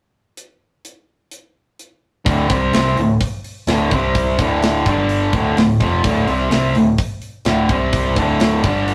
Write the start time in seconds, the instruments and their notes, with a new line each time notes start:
0.37 closed hi-hat
0.85 closed hi-hat
1.31 closed hi-hat
1.79 closed hi-hat
2.26 picked electric bass D1, distorted electric guitar D2 A2 D3, kick, open hi-hat
2.49 picked electric bass C2, distorted electric guitar C3 G3 C4, kick, open hi-hat
2.72 picked electric bass C2, distorted electric guitar C3 G3 C4, snare, open hi-hat
2.96 picked electric bass D1, distorted electric guitar D2 A2, open hi-hat
3.21 kick, open hi-hat
3.44 open hi-hat
3.67 picked electric bass D1, distorted electric guitar D2 A2 D3, snare, open hi-hat
3.91 picked electric bass C2, distorted electric guitar C3 G3 C4, kick, open hi-hat
4.15 kick, open hi-hat
4.38 picked electric bass D1, distorted electric guitar D2 A2 D3, kick, open hi-hat
4.62 snare, open hi-hat
4.86 picked electric bass G1, distorted electric guitar G2 D3 G3, kick, open hi-hat
5.09 open hi-hat
5.33 picked electric bass D1, distorted electric guitar D2 A2 D3, kick, open hi-hat
5.56 picked electric bass D1, distorted electric guitar D2 A2, snare, open hi-hat
5.80 picked electric bass F1, distorted electric guitar F2 C3 F3, kick, open hi-hat
6.03 picked electric bass D1, distorted electric guitar D2 A2 D3, kick, open hi-hat
6.27 picked electric bass C2, distorted electric guitar C3 G3 C4, open hi-hat
6.50 picked electric bass C2, distorted electric guitar C3 G3 C4, snare, open hi-hat
6.75 picked electric bass D1, distorted electric guitar D2 A2, open hi-hat
6.98 kick, open hi-hat
7.22 open hi-hat
7.45 picked electric bass D1, distorted electric guitar D2 A2 D3, snare, open hi-hat
7.69 picked electric bass C2, distorted electric guitar C3 G3 C4, kick, open hi-hat
7.93 kick, open hi-hat
8.16 picked electric bass D1, distorted electric guitar D2 A2 D3, kick, open hi-hat
8.40 snare, open hi-hat
8.63 picked electric bass G1, distorted electric guitar G2 D3 G3, kick, open hi-hat
8.88 open hi-hat